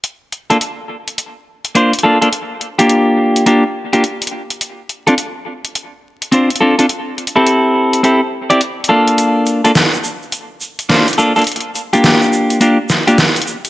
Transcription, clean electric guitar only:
X:1
M:4/4
L:1/16
Q:"Swing 16ths" 1/4=105
K:Bblyd
V:1 name="Clean electric guitar"
z3 [B,DFA] z8 [B,DFc] z [B,DFA] [B,DFA] | z3 [B,DFG]4- [B,DFG] [B,DFG] z2 [B,DFG] z4 | z3 [CDFA] z8 [CDFc] z [CDFA] [CDFA] | z3 [CEGA]4- [CEGA] [CEGA] z2 [CEGd] z2 [B,DFA]2- |
[B,DFA]3 [B,DFA] z8 [B,DFc] z [B,DFA] [B,DFA] | z3 [B,DFG]4- [B,DFG] [B,DFG] z2 [B,DFG] z4 |]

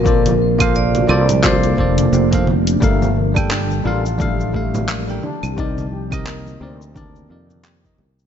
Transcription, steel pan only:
X:1
M:4/4
L:1/8
Q:"Swing 16ths" 1/4=87
K:Gm
V:1 name="Steel pan"
z8 | A, B, D F A, A, B, D | E G B, C D E G B, |]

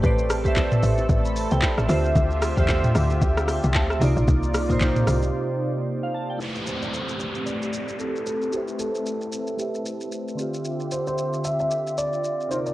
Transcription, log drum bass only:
X:1
M:4/4
L:1/16
Q:"Swing 16ths" 1/4=113
K:Am
V:1 name="Log drum bass" clef=bass
A,,,6 A,,,2 A,,,3 C,, z A,,, D,,2 | D,,3 E,,3 D,,2 D,,3 C,, D,,2 C,, _B,,, | C,,6 C,,2 z8 | z16 |
z16 | z16 |]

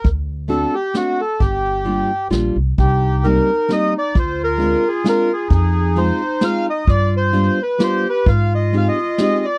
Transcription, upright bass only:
X:1
M:3/4
L:1/8
Q:"Swing" 1/4=131
K:Gm
V:1 name="Upright bass" clef=bass
D,,4 z2 | G,,,4 B,,, C,, | [K:Cm] C,,4 z2 | D,,4 z2 |
F,,4 z2 | G,,4 z2 | A,,4 z2 |]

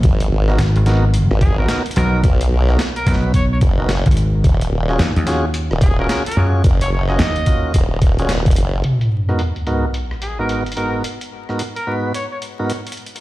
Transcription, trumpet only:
X:1
M:4/4
L:1/16
Q:"Swing 16ths" 1/4=109
K:Abdor
V:1 name="Trumpet"
z8 z2 A B B z B z | z4 z B z2 d d z6 | z8 z2 A B B B z2 | z d d e6 z6 z |
z8 z2 A B B z B z | z4 z B z2 d d z6 |]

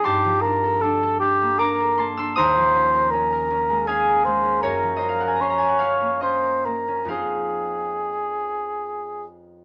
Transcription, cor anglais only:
X:1
M:3/4
L:1/8
Q:1/4=77
K:Fm
V:1 name="Cor anglais"
G B =A G B z | c2 B2 A c | B2 d2 c B | A4- A z |]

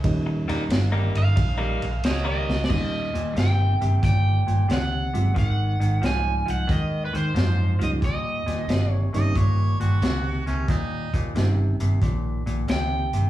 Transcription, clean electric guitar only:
X:1
M:4/4
L:1/16
Q:"Swing" 1/4=90
K:Ebmix
V:1 name="Clean electric guitar" clef=bass
z2 [E,G,B,E] z2 [E,G,B,E] z3 [E,G,B,E] z3 [E,G,B,E] z2 | [E,,B,,]2 [E,,B,,]2 [E,,C,]2 [E,,C,]2 [E,,B,,]2 [E,,B,,]2 [E,,C,]2 [E,,C,]2 | [A,,E,]2 [A,,E,]2 [A,,F,]2 [A,,F,]2 [A,,E,]2 [A,,E,]2 [A,,F,]2 [A,,F,]2 | [E,,B,,]2 [E,,B,,]2 [E,,C,]2 [E,,C,]2 [E,,B,,]2 [E,,B,,]2 [E,,C,]2 [E,,C,]2 |
[E,,B,,]2 [E,,B,,]2 [E,,C,]2 [E,,C,]2 [E,,B,,]2 [E,,B,,]2 [E,,C,]2 [E,,C,]2 |]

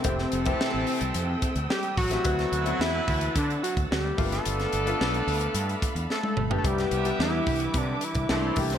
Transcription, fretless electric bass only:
X:1
M:4/4
L:1/16
Q:1/4=109
K:C
V:1 name="Fretless electric bass" clef=bass
F,,,2 F,,,2 z A,,, z C,, F,,2 z D,, z2 A,,,2 | D,,2 D,,2 E,,2 D,,2 D,2 z D,, D,,2 G,,,2 | G,,,2 G,,,2 B,,,2 D,,2 G,,2 z E,, z2 G,,,2 | C,,2 C,,2 E,,2 C,,2 C,2 z C,, C,,2 C,,2 |]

